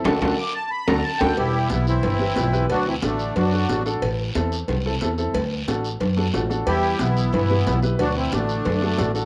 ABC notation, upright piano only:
X:1
M:4/4
L:1/8
Q:1/4=181
K:Dmix
V:1 name="Upright piano"
[DFA] [DFA] z3 [DFA] z [DFA] | z2 [EGB] z2 [EGB] [EGB] [EGB] | z2 [DFA] z2 [DFA] [DFA] [DFA] | z2 [CEA] z2 [CEA] [CEA] [CEA] |
z2 [DFA] z2 [DFA] [DFA] [DFA] | z2 [EGB] z2 [EGB] [EGB] [EGB] | z2 [DFA] z2 [DFA] [DFA] [DFA] |]